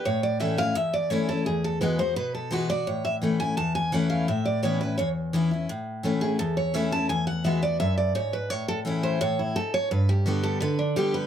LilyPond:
<<
  \new Staff \with { instrumentName = "Steel-string acoustic guitar" } { \time 4/4 \key a \major \tempo 4 = 170 cis''8 d''8 e''8 f''8 e''8 d''8 cis''8 a'8 | gis'8 a'8 b'8 c''8 b'8 a'8 b'8 d''8 | cis''8 e''8 r8 gis''8 a''8 gis''8 fis''8 f''8 | e''8 d''8 cis''8 b'8 cis''8 r4. |
r4. gis'8 a'8 cis''8 e''8 a''8 | gis''8 fis''8 e''8 d''8 e''8 d''8 cis''8 b'8 | cis''8 a'8 r8 c''8 cis''8 e'8 a'8 cis''8 | b'8 g'8 fis'8 a'8 b'8 d'8 g'8 b'8 | }
  \new Staff \with { instrumentName = "Steel-string acoustic guitar" } { \time 4/4 \key a \major << { r4 <e a cis' e'>8 <cis' e'>8 r4 <e a cis' e'>8 <cis' e'>8 | r4 <e gis b fis'>8 <b fis'>8 r4 <e gis b fis'>8 <b fis'>8 | r4 <e a cis' e'>8 <cis' e'>8 r4 <e a cis' e'>4 | r4 <e b cis' e'>8 <cis' e'>8 r4 <e b cis' e'>8 <cis' e'>8 |
r4 <e a cis' e'>8 <cis' e'>8 r4 <e a cis' e'>8 <cis' e'>8 | r4 <e gis b fis'>8 fis'8 r2 | r4 <e a cis' e'>4 r2 | r4 <d g b g'>4 r4 <d g b g'>4 | } \\ { a,2 e,2 | e,2 b,2 | a,2 e,2 | a,2 e,2 |
a,2 e,2 | e,2 fis,4 gis,4 | a,2 a,4 gis,4 | g,2 d2 | } >> }
>>